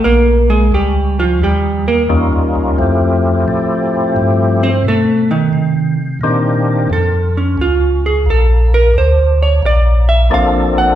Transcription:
0.04 tonewheel organ A#1, hollow-body jazz guitar A#3 A#4
0.50 hollow-body jazz guitar G#3 G#4
0.72 tonewheel organ C#2, hollow-body jazz guitar G3 G4
1.19 hollow-body jazz guitar F3 F4
1.42 tonewheel organ D#2, hollow-body jazz guitar G3 G4
1.88 hollow-body jazz guitar A#3 A#4
2.09 tonewheel organ E2 G3 A#3 C#4 D#4 F4
2.33 tonewheel organ D#2
2.55 tonewheel organ C#2
2.78 tonewheel organ F2 F3 A3 C4 E4 G4
3.48 tonewheel organ A2
4.16 tonewheel organ G2
4.63 hollow-body jazz guitar C4 C5
4.85 tonewheel organ B2, hollow-body jazz guitar A3 A4
5.31 hollow-body jazz guitar D#3 D#4
5.53 tonewheel organ C3
6.21 tonewheel organ A#2 D#3 A#3 C4 D4 G4
6.90 tonewheel organ F2, hollow-body jazz guitar A4
7.37 hollow-body jazz guitar C#4
7.58 tonewheel organ C#2, hollow-body jazz guitar F4
8.06 hollow-body jazz guitar G#4
8.26 tonewheel organ A#1
8.30 hollow-body jazz guitar A4
8.74 hollow-body jazz guitar A#4
8.94 tonewheel organ D2
8.98 hollow-body jazz guitar C5
9.43 hollow-body jazz guitar C#5
9.62 tonewheel organ A#1, hollow-body jazz guitar D5
10.09 hollow-body jazz guitar E5
10.30 tonewheel organ A1 F3 A#3 C4 D4 A4, hollow-body jazz guitar F5
10.78 hollow-body jazz guitar F#5

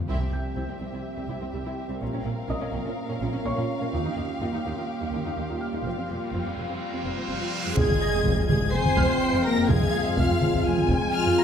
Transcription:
0.08 cello section C2, double bass section C2, ambient pad G3 C4 G4 E5, viola section C4 E4, violin section G4 E5
0.21 cello section C2, viola section C4
0.33 double bass section C2, cello section C2, viola section G3 C4, felt piano G6
0.56 double bass section C2, cello section C2, viola section C4 E4
0.69 cello section C2, viola section C4
0.81 cello section C2, double bass section C2, viola section G3 C4
0.93 cello section C2, viola section C4 E4
1.17 cello section C2, viola section G3 C4
1.28 double bass section C2, cello section C2, viola section C4 E4
1.41 cello section C2, viola section C4
1.52 double bass section C2, cello section C2, viola section G3 C4
1.65 cello section C2, viola section C4 E4
1.89 cello section C2, viola section G3 C4
2.01 double bass section A#1, cello section A#2, ambient pad A#3 C#4 F4 F5, viola section C#4 F4, violin section A#4 F5
2.13 cello section A#2, viola section C#4
2.25 double bass section A#1, cello section A#2, viola section A#3 C#4
2.48 double bass section A#1, cello section A#2, viola section C#4 F4, felt piano D#5 D#6
2.61 cello section A#2, viola section C#4
2.73 double bass section A#1, cello section A#2, viola section A#3 C#4
2.85 cello section A#2, viola section C#4 F4
3.09 cello section A#2, viola section A#3 C#4
3.21 double bass section A#1, cello section A#2, viola section C#4 F4
3.33 cello section A#2, viola section C#4
3.44 double bass section A#1, cello section A#2, viola section A#3 C#4, felt piano C#5 C#6
3.57 cello section A#2, viola section C#4 F4
3.81 cello section A#2, viola section A#3 C#4
3.93 cello section D#2, double bass section D#2, ambient pad G3 A#3, viola section D#4 F4, violin section G4
4.05 cello section D#2, viola section D#4
4.17 double bass section D#2, cello section D#2, viola section A#3 D#4
4.41 cello section D#2, double bass section D#2, viola section D#4 F4
4.53 cello section D#2, viola section D#4
4.65 cello section D#2, double bass section D#2, viola section A#3 D#4
4.76 cello section D#2, viola section D#4 F4
5.01 cello section D#2, viola section A#3 D#4
5.13 double bass section D#2, cello section D#2, viola section D#4 F4
5.25 cello section D#2, viola section D#4
5.37 cello section D#2, double bass section D#2, viola section A#3 D#4
5.49 cello section D#2, viola section D#4 F4
5.61 felt piano F6
5.73 cello section D#2, viola section A#3 D#4
5.85 double bass section F1, cello section F2, ambient pad C4, viola section C4 F4, violin section F5, reverse cymbal
5.97 cello section F2, viola section C4
6.09 double bass section F1, cello section F2, viola section G3 C4
6.33 double bass section F1, cello section F2, viola section C4 F4
6.45 cello section F2, viola section C4
6.57 double bass section F1, cello section F2, viola section G3 C4
6.69 cello section F2, viola section C4 F4
6.93 cello section F2, viola section G3 C4
7.05 double bass section F1, cello section F2, viola section C4 F4
7.16 cello section F2, viola section C4
7.28 double bass section F1, cello section F2, french horn section F3, viola section G3 C4 F4, violin section F6
7.41 cello section F2, viola section C4 F4
7.65 cello section F2, viola section G3 C4
7.77 double bass section F1, cello section F2, trombone section F3 G#3, french horn section G#3, ambient pad G#3 C4 F4 F5, viola section G#4, violin section G#6, taiko, impact
7.89 cello section F2, taiko mid
8.01 felt piano A#6
8.13 cello section F2
8.25 double bass section F1, cello section F2, taiko
8.38 cello section F2
8.49 double bass section F1, cello section F2, french horn section G#3, viola section G#4, violin section G#6, taiko mid
8.61 cello section F2, taiko
8.73 double bass section F1, cello section F2, french horn section C4, viola section C5, violin section G#5 C7
8.85 cello section F2, taiko mid
8.97 double bass section F1, cello section F2, felt piano F6, taiko
9.22 violin section G5
9.33 cello section F2, taiko rim
9.45 french horn section A#3, viola section A#4, violin section A#6
9.58 cello section F2
9.69 double bass section F1, cello section F2, french horn section G#3, viola section G#4, violin section F5 G#6, taiko
9.81 cello section F2, taiko mid
10.06 cello section F2
10.17 double bass section F1, cello section F2, french horn section F3, viola section F4, violin section F6, taiko
10.30 cello section F2
10.41 double bass section F1, cello section F2, taiko mid
10.53 cello section F2, taiko
10.66 double bass section F1, cello section F2, violin section G#5
10.77 cello section F2, taiko mid
10.89 double bass section F1, cello section F2, taiko
11.01 taiko rim
11.13 french horn section F3, viola section F4, violin section F6
11.25 cello section F2
11.38 felt piano A#5 A#6

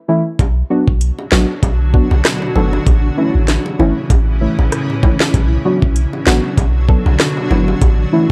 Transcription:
0.08 synth stab E3 A3 C#4 E4
0.39 sub bass B1, ambient pad B2 D3 F#3 D4 F#4, kick, closed hi-hat, high bongo
0.70 synth stab F#3 B3 D4 F#4
0.88 sub bass B1, kick
1.01 closed hi-hat
1.19 high bongo
1.32 sub bass A1, synth stab F#3 B3 D4 F#4, snare, low bongo
1.63 sub bass B1, kick, closed hi-hat, high bongo
1.94 synth stab F#3 B3 D4 F#4, kick
2.11 sub bass B1, high bongo
2.25 cross-stick, snare, closed hi-hat
2.42 high bongo
2.56 sub bass G1, synth stab F#3 B3 D4 A4, low bongo
2.73 high bongo
2.87 sub bass A1, ambient pad A2 C#3 E3 C#4 E4, kick, closed hi-hat, high bongo
3.17 synth stab E3 A3 C#4 E4
3.35 sub bass A1
3.48 snare, closed hi-hat
3.66 high bongo
3.79 sub bass G1, synth stab E3 A3 C#4 E4, low bongo
4.10 sub bass A1, kick, closed hi-hat, high bongo
4.41 synth stab E3 A3 C#4 E4
4.59 sub bass A1, high bongo
4.72 cross-stick, closed hi-hat
4.90 high bongo
5.03 synth stab E3 A3 C#4 E4, kick, low bongo
5.20 snare, high bongo
5.34 sub bass B1, ambient pad B2 D3 F#3 D4 F#4, kick, closed hi-hat, high bongo
5.65 synth stab F#3 B3 D4 F#4
5.82 sub bass B1, kick
5.96 closed hi-hat
6.13 high bongo
6.27 sub bass A1, synth stab F#3 B3 D4 F#4, snare, low bongo
6.58 sub bass B1, kick, closed hi-hat, high bongo
6.88 synth stab F#3 B3 D4 A4, kick
7.06 sub bass B1, high bongo
7.20 cross-stick, snare, closed hi-hat
7.37 high bongo
7.50 sub bass G1, synth stab F#3 B3 D4 E4, low bongo
7.68 high bongo
7.81 sub bass A1, ambient pad A2 C#3 E3 C#4 E4, kick, closed hi-hat, high bongo
8.12 synth stab E3 A3 C#4 E4

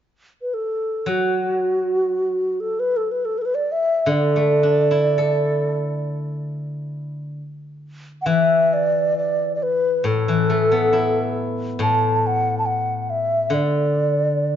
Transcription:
0.42 xiao B4
0.54 xiao A4
1.06 guzheng F#3, xiao F#4
2.60 xiao A4
2.80 xiao B4
2.97 xiao A4
3.11 xiao B4
3.25 xiao A4
3.38 xiao A4 B4
3.45 xiao B4
3.55 xiao D5
3.72 xiao E5
4.06 guzheng D3, xiao D5
4.36 guzheng A3
4.63 guzheng D4
4.91 guzheng E4
5.18 guzheng A4
8.22 xiao F#5
8.26 guzheng E3, xiao E5
8.73 xiao D5
9.18 xiao D5
9.55 xiao D5
9.63 xiao B4
10.04 guzheng A2, xiao A4
10.28 guzheng E3
10.50 guzheng A3
10.72 guzheng B3
10.93 guzheng E4
11.79 guzheng A2, xiao A5
12.16 xiao A5
12.27 xiao F#5
12.59 xiao A5
12.66 xiao F#5
13.02 xiao F#5
13.10 xiao E5
13.50 guzheng D3, xiao D5

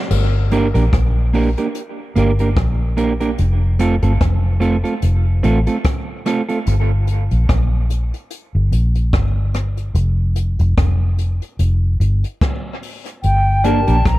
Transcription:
0.10 fingered electric bass G1, crash
0.51 clean electric guitar A#3 D4 G4 A#4, closed hi-hat
0.74 fingered electric bass A#1, clean electric guitar A#3 D4 G4 A#4, closed hi-hat
0.93 fingered electric bass A#1, kick, cross-stick, closed hi-hat
1.33 clean electric guitar A#3 D4 G4 A#4, open hi-hat
1.57 clean electric guitar A#3 D4 G4 A#4, closed hi-hat
1.75 closed hi-hat
2.16 fingered electric bass G1, clean electric guitar A#3 D4 G4 A#4, closed hi-hat
2.39 clean electric guitar A#3 D4 G4 A#4, closed hi-hat
2.56 fingered electric bass A#1, kick, cross-stick, closed hi-hat
2.97 clean electric guitar A#3 D4 G4 A#4, closed hi-hat
3.20 clean electric guitar A#3 D4 G4 A#4, closed hi-hat
3.38 fingered electric bass F1, closed hi-hat
3.79 clean electric guitar A3 C4 F4 A4, closed hi-hat
4.02 fingered electric bass G1, clean electric guitar A3 C4 F4 A4, closed hi-hat
4.21 fingered electric bass F1, kick, cross-stick, closed hi-hat
4.60 clean electric guitar A3 C4 F4 A4, closed hi-hat
4.84 clean electric guitar A3 C4 F4 A4, closed hi-hat
5.02 fingered electric bass F1, closed hi-hat
5.43 fingered electric bass A1, clean electric guitar A3 C4 F4 A4, closed hi-hat
5.67 clean electric guitar A3 C4 F4 A4, closed hi-hat
5.84 kick, cross-stick, closed hi-hat
6.26 clean electric guitar A3 C4 F4 A4, cross-stick, closed hi-hat
6.49 clean electric guitar A3 C4 F4 A4, closed hi-hat
6.67 fingered electric bass G1, closed hi-hat
7.07 closed hi-hat
7.31 fingered electric bass A#1, closed hi-hat
7.49 fingered electric bass A#1, kick, cross-stick, closed hi-hat
7.90 closed hi-hat
8.14 closed hi-hat
8.30 closed hi-hat
8.55 fingered electric bass G1
8.72 fingered electric bass A#1, closed hi-hat
8.95 closed hi-hat
9.13 fingered electric bass G1, kick, cross-stick, closed hi-hat
9.54 cross-stick, closed hi-hat
9.77 closed hi-hat
9.95 fingered electric bass F1, closed hi-hat
10.36 closed hi-hat
10.59 fingered electric bass F1, closed hi-hat
10.78 fingered electric bass F1, kick, cross-stick, closed hi-hat
11.18 closed hi-hat
11.42 closed hi-hat
11.59 fingered electric bass F1, closed hi-hat
12.00 fingered electric bass G1, closed hi-hat
12.24 closed hi-hat
12.41 kick, cross-stick, closed hi-hat
12.83 open hi-hat
13.06 closed hi-hat
13.23 fingered electric bass G1, flute G5, closed hi-hat
13.64 clean electric guitar A#3 D4 G4 A#4, upright piano D4 G4 A#4, flute A5, closed hi-hat
13.87 fingered electric bass A#1, clean electric guitar A#3 D4 G4 A#4, closed hi-hat
14.05 fingered electric bass A#1, flute A#5, kick, cross-stick, closed hi-hat

